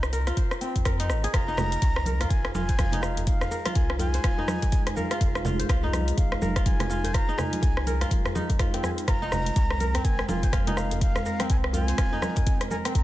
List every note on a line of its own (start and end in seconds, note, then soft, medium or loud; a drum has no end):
0.00 0.31 C2 loud
0.00 0.99 D#4 loud
0.00 0.27 F4 medium
0.00 0.10 C5 medium
0.00 cross-stick medium
0.00 shaker soft
0.13 0.85 A#4 medium
0.13 closed hi-hat soft
0.13 shaker medium
0.27 1.33 F4 loud
0.27 cross-stick medium
0.27 closed hi-hat soft
0.27 shaker soft
0.37 1.56 C5 medium
0.37 kick loud
0.37 closed hi-hat medium
0.37 shaker medium
0.51 cross-stick medium
0.51 shaker soft
0.61 2.41 C4 medium
0.61 closed hi-hat soft
0.61 shaker medium
0.76 0.82 F2 medium
0.76 kick medium
0.76 closed hi-hat soft
0.76 shaker soft
0.85 1.11 F2 medium
0.85 2.06 A#4 medium
0.85 kick loud
0.85 cross-stick loud
0.85 closed hi-hat medium
0.85 shaker soft
1.00 1.48 D#4 loud
1.00 closed hi-hat medium
1.00 shaker soft
1.09 1.27 G#1 loud
1.09 cross-stick medium
1.09 shaker medium
1.24 2.60 G#4 loud
1.24 closed hi-hat soft
1.24 shaker soft
1.33 1.77 F1 loud
1.33 9.04 G#3 medium
1.33 9.04 D#4 medium
1.33 9.04 F4 medium
1.33 2.20 F4 medium
1.33 9.04 G#4 medium
1.33 2.31 A#5 loud
1.33 kick loud
1.33 cross-stick loud
1.33 closed hi-hat medium
1.33 djembe tone medium
1.33 shaker medium
1.48 2.93 D#4 loud
1.48 shaker soft
1.57 cross-stick medium
1.57 djembe slap medium
1.57 djembe tone medium
1.57 low conga medium
1.57 shaker medium
1.72 closed hi-hat soft
1.72 shaker soft
1.82 2.25 C2 loud
1.82 kick loud
1.82 closed hi-hat medium
1.82 shaker medium
1.96 cross-stick medium
1.96 djembe tone medium
2.05 3.34 A#4 medium
2.05 closed hi-hat soft
2.05 high conga medium
2.05 shaker medium
2.20 2.54 F4 loud
2.20 cross-stick medium
2.20 closed hi-hat soft
2.20 djembe tone medium
2.20 shaker soft
2.29 2.48 G#1 medium
2.29 2.54 G#5 loud
2.29 kick loud
2.29 closed hi-hat medium
2.29 shaker medium
2.45 cross-stick medium
2.45 djembe slap medium
2.54 3.46 F1 medium
2.54 2.78 F4 medium
2.54 3.04 G#5 loud
2.54 djembe slap medium
2.54 high conga medium
2.54 djembe tone medium
2.54 shaker medium
2.69 3.88 C5 medium
2.69 kick medium
2.69 closed hi-hat soft
2.69 shaker soft
2.78 3.65 F4 medium
2.78 kick loud
2.78 cross-stick medium
2.78 closed hi-hat medium
2.78 high conga medium
2.78 djembe tone loud
2.78 shaker medium
2.92 4.38 D#4 loud
2.92 closed hi-hat soft
2.92 low conga medium
3.02 3.25 F5 medium
3.02 cross-stick medium
3.02 djembe slap medium
3.02 shaker medium
3.17 closed hi-hat soft
3.17 djembe tone medium
3.17 shaker soft
3.26 3.72 F5 loud
3.26 kick loud
3.26 closed hi-hat medium
3.26 shaker medium
3.41 cross-stick medium
3.41 djembe tone medium
3.41 shaker soft
3.51 4.78 A#4 medium
3.51 djembe slap medium
3.51 shaker medium
3.66 3.99 F4 loud
3.66 cross-stick medium
3.66 closed hi-hat soft
3.66 high conga medium
3.66 shaker soft
3.74 4.18 C2 loud
3.74 3.97 G#5 loud
3.74 kick loud
3.74 closed hi-hat medium
3.74 djembe tone medium
3.74 shaker medium
3.90 cross-stick loud
3.99 4.24 F4 medium
3.99 4.98 G#5 loud
3.99 closed hi-hat soft
3.99 djembe tone loud
3.99 high conga medium
3.99 shaker medium
4.14 5.33 C5 medium
4.14 closed hi-hat soft
4.14 shaker soft
4.24 4.33 D#1 medium
4.24 5.10 F4 medium
4.24 kick loud
4.24 cross-stick loud
4.24 closed hi-hat medium
4.24 shaker medium
4.38 5.83 D#4 medium
4.38 djembe tone medium
4.48 cross-stick medium
4.48 djembe slap loud
4.48 high conga medium
4.48 shaker loud
4.62 kick medium
4.62 closed hi-hat soft
4.62 djembe slap loud
4.62 djembe tone medium
4.62 shaker soft
4.72 kick loud
4.72 closed hi-hat medium
4.72 shaker medium
4.87 cross-stick medium
4.87 closed hi-hat soft
4.87 djembe slap medium
4.96 6.24 A#4 medium
4.96 5.91 F5 medium
4.96 high conga medium
4.96 djembe tone medium
4.96 shaker loud
5.11 5.45 F4 loud
5.11 cross-stick medium
5.11 closed hi-hat soft
5.11 shaker soft
5.21 5.64 F1 loud
5.21 kick loud
5.21 closed hi-hat medium
5.21 djembe tone loud
5.21 shaker medium
5.35 cross-stick medium
5.35 shaker soft
5.45 5.69 F4 medium
5.45 djembe slap medium
5.45 low conga medium
5.45 shaker loud
5.59 6.78 C5 medium
5.59 closed hi-hat soft
5.59 djembe tone medium
5.59 shaker soft
5.69 6.12 C2 loud
5.69 6.56 F4 medium
5.69 kick loud
5.69 cross-stick loud
5.69 closed hi-hat medium
5.69 shaker medium
5.83 7.28 D#4 loud
5.83 djembe tone loud
5.93 cross-stick medium
5.93 closed hi-hat soft
5.93 high conga medium
5.93 shaker loud
6.08 closed hi-hat soft
6.08 shaker soft
6.17 6.35 G#1 medium
6.17 6.62 F5 medium
6.17 kick loud
6.17 closed hi-hat medium
6.17 djembe tone medium
6.17 shaker medium
6.32 cross-stick medium
6.32 djembe slap medium
6.42 7.33 F1 medium
6.42 7.69 A#4 medium
6.42 djembe slap medium
6.42 djembe tone medium
6.42 high conga medium
6.42 shaker medium
6.56 6.90 F4 loud
6.56 kick medium
6.56 cross-stick medium
6.56 closed hi-hat soft
6.56 shaker soft
6.65 7.15 G#5 loud
6.65 kick loud
6.65 closed hi-hat medium
6.65 high conga medium
6.65 shaker medium
6.80 cross-stick medium
6.80 closed hi-hat soft
6.80 djembe tone medium
6.80 low conga medium
6.90 7.14 F4 medium
6.90 djembe slap medium
6.90 shaker loud
7.04 8.23 C5 medium
7.04 closed hi-hat soft
7.04 djembe tone loud
7.04 shaker soft
7.14 8.01 F4 medium
7.14 7.40 A#5 loud
7.14 kick loud
7.14 cross-stick medium
7.14 closed hi-hat medium
7.14 shaker medium
7.29 8.35 D#4 loud
7.29 shaker soft
7.38 8.11 G#5 loud
7.38 cross-stick medium
7.38 djembe slap medium
7.38 djembe tone medium
7.38 low conga medium
7.38 shaker medium
7.53 closed hi-hat soft
7.53 high conga medium
7.53 shaker soft
7.62 8.06 C2 loud
7.62 kick loud
7.62 closed hi-hat medium
7.62 djembe tone medium
7.62 shaker medium
7.77 cross-stick medium
7.86 9.14 A#4 medium
7.86 closed hi-hat soft
7.86 high conga medium
7.86 shaker medium
8.01 8.59 F4 loud
8.01 cross-stick medium
8.01 closed hi-hat soft
8.01 djembe tone medium
8.01 shaker soft
8.11 8.20 D#1 medium
8.11 kick loud
8.11 closed hi-hat medium
8.11 high conga medium
8.11 shaker medium
8.25 cross-stick medium
8.25 djembe tone medium
8.25 shaker soft
8.35 9.22 D#4 medium
8.35 djembe slap medium
8.35 high conga medium
8.35 shaker loud
8.50 kick medium
8.50 closed hi-hat soft
8.50 djembe slap medium
8.50 shaker soft
8.59 9.07 F4 medium
8.59 kick loud
8.59 cross-stick medium
8.59 closed hi-hat medium
8.59 djembe tone medium
8.59 shaker medium
8.74 9.94 C4 medium
8.74 closed hi-hat soft
8.74 djembe slap medium
8.83 8.90 G#5 loud
8.83 cross-stick medium
8.83 high conga medium
8.83 djembe tone medium
8.83 shaker medium
8.98 closed hi-hat soft
8.98 shaker soft
9.07 9.51 F1 loud
9.07 12.91 G#3 medium
9.07 13.03 C4 medium
9.07 10.28 F4 medium
9.07 13.03 A#4 medium
9.07 10.06 A#5 loud
9.07 kick loud
9.07 cross-stick medium
9.07 closed hi-hat medium
9.07 djembe tone medium
9.07 shaker medium
9.22 10.67 D#4 loud
9.22 shaker soft
9.32 cross-stick medium
9.32 djembe slap medium
9.32 djembe tone medium
9.32 low conga medium
9.32 shaker medium
9.46 closed hi-hat soft
9.46 shaker soft
9.56 9.99 C2 loud
9.56 kick loud
9.56 closed hi-hat medium
9.56 shaker medium
9.71 cross-stick medium
9.71 djembe tone medium
9.80 11.08 A#4 medium
9.80 closed hi-hat soft
9.80 high conga medium
9.80 shaker medium
9.94 11.40 C4 medium
9.94 cross-stick medium
9.94 closed hi-hat soft
9.94 djembe tone medium
9.94 shaker soft
10.05 10.22 G#1 medium
10.05 10.28 G#5 loud
10.05 kick loud
10.05 closed hi-hat medium
10.05 shaker medium
10.19 cross-stick medium
10.19 djembe slap medium
10.29 11.20 F1 medium
10.29 10.53 F4 medium
10.29 10.79 G#5 loud
10.29 djembe slap loud
10.29 high conga medium
10.29 djembe tone medium
10.29 shaker medium
10.43 11.62 C5 medium
10.43 kick medium
10.43 closed hi-hat soft
10.43 shaker soft
10.52 11.74 F4 medium
10.52 kick loud
10.52 cross-stick medium
10.52 closed hi-hat medium
10.52 high conga medium
10.52 djembe tone medium
10.52 shaker medium
10.67 12.12 D#4 loud
10.67 closed hi-hat soft
10.67 low conga medium
10.77 11.01 F5 medium
10.77 cross-stick medium
10.77 djembe slap medium
10.77 shaker medium
10.91 closed hi-hat soft
10.91 djembe tone medium
10.91 shaker soft
11.01 11.47 F5 loud
11.01 kick loud
11.01 closed hi-hat medium
11.01 shaker soft
11.15 cross-stick medium
11.15 djembe tone medium
11.15 shaker soft
11.26 12.53 A#4 medium
11.26 djembe slap medium
11.26 shaker medium
11.40 12.85 C4 medium
11.40 cross-stick medium
11.40 closed hi-hat soft
11.40 high conga medium
11.40 shaker soft
11.49 11.93 C2 loud
11.49 11.56 G#5 medium
11.49 kick loud
11.49 closed hi-hat medium
11.49 djembe tone medium
11.49 shaker medium
11.64 cross-stick medium
11.73 11.98 F4 medium
11.73 12.67 G#5 loud
11.73 closed hi-hat soft
11.73 djembe tone medium
11.73 high conga medium
11.73 shaker medium
11.88 13.03 C5 medium
11.88 closed hi-hat soft
11.88 shaker soft
11.98 12.08 D#1 medium
11.98 13.03 F4 medium
11.98 kick loud
11.98 cross-stick medium
11.98 closed hi-hat medium
11.98 shaker medium
12.12 13.03 D#4 medium
12.12 djembe tone medium
12.22 cross-stick medium
12.22 djembe slap medium
12.22 high conga medium
12.22 shaker medium
12.36 kick medium
12.36 closed hi-hat soft
12.36 djembe slap loud
12.36 djembe tone medium
12.36 shaker soft
12.47 kick loud
12.47 closed hi-hat medium
12.47 shaker medium
12.61 cross-stick medium
12.61 closed hi-hat medium
12.61 djembe slap medium
12.70 13.03 A#4 medium
12.70 12.77 G#5 medium
12.70 high conga medium
12.70 djembe tone medium
12.70 shaker medium
12.85 13.03 C4 medium
12.85 cross-stick medium
12.85 closed hi-hat soft
12.85 shaker soft
12.95 13.03 C2 loud
12.95 13.03 G3 medium
12.95 13.03 E4 medium
12.95 13.03 A#5 loud
12.95 kick loud
12.95 closed hi-hat medium
12.95 djembe tone medium
12.95 shaker soft